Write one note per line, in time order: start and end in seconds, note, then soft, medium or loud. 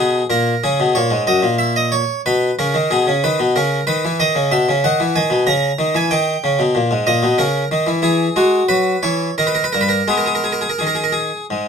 0.00 0.21 B2 soft
0.00 0.25 G#4 medium
0.30 0.53 A#2 medium
0.30 0.62 A#4 medium
0.64 0.78 C#3 soft
0.64 0.95 G#4 medium
0.80 0.94 B2 medium
0.95 1.10 A#2 soft
0.95 1.22 C#5 medium
1.10 1.26 G#2 medium
1.27 1.42 F#2 medium
1.27 1.55 D#5 medium
1.42 2.02 A#2 medium
1.59 1.75 E5 medium
1.76 1.92 D#5 medium
1.92 2.20 C#5 medium
2.26 2.49 B2 medium
2.26 2.53 B4 medium
2.59 2.74 C#3 medium
2.59 2.91 A#4 medium
2.74 2.90 D#3 medium
2.91 3.06 B2 soft
2.91 3.23 G#4 medium
3.07 3.23 C#3 soft
3.24 3.39 D#3 medium
3.24 3.51 B4 medium
3.39 3.55 B2 medium
3.56 3.79 C#3 medium
3.56 3.83 A#4 medium
3.87 4.03 D#3 medium
3.87 4.19 B4 medium
4.05 4.19 E3 medium
4.20 4.35 D#3 medium
4.20 4.52 D#5 medium
4.35 4.51 C#3 medium
4.51 4.67 B2 soft
4.51 4.84 E5 medium
4.69 4.83 C#3 medium
4.84 4.99 D#3 medium
4.84 5.16 F#5 medium
5.00 5.15 E3 medium
5.16 5.31 D#3 medium
5.16 5.43 G#5 medium
5.30 5.46 B2 medium
5.47 5.70 C#3 medium
5.47 5.95 A#5 loud
5.79 5.94 D#3 medium
5.95 6.11 E3 medium
5.95 6.12 G#5 medium
6.11 6.35 D#3 medium
6.11 6.94 G5 medium
6.44 6.59 C#3 medium
6.59 6.75 B2 medium
6.75 6.91 A#2 medium
6.91 7.07 G#2 medium
7.07 7.23 A#2 medium
7.07 7.35 D#5 medium
7.23 7.39 B2 medium
7.38 7.63 C#3 medium
7.38 7.67 A#4 medium
7.71 7.88 D#3 medium
7.87 8.01 E3 medium
8.02 8.27 E3 medium
8.02 8.37 G#4 medium
8.36 8.61 G#3 soft
8.36 8.65 F#4 medium
8.69 8.94 F#3 medium
8.69 9.04 B4 medium
9.03 9.29 E3 medium
9.03 9.33 C#5 medium
9.38 9.64 D#3 medium
9.38 9.47 A#4 medium
9.47 9.56 B4 medium
9.55 9.64 A#4 medium
9.64 9.73 B4 medium
9.73 10.00 G2 medium
9.73 9.81 A#4 medium
9.81 9.90 B4 medium
9.89 10.06 A#4 medium
10.08 10.65 G#3 soft
10.08 10.65 B3 soft
10.08 10.17 G#4 medium
10.17 10.26 A#4 medium
10.26 10.35 G#4 medium
10.35 10.44 A#4 medium
10.44 10.52 G#4 medium
10.52 10.61 A#4 medium
10.61 10.69 G#4 medium
10.70 10.78 A#4 medium
10.79 11.30 D#3 soft
10.79 10.87 G#4 medium
10.87 10.95 A#4 medium
10.95 11.03 G#4 medium
11.04 11.12 A#4 medium
11.12 11.45 G#4 medium
11.50 11.68 G#2 soft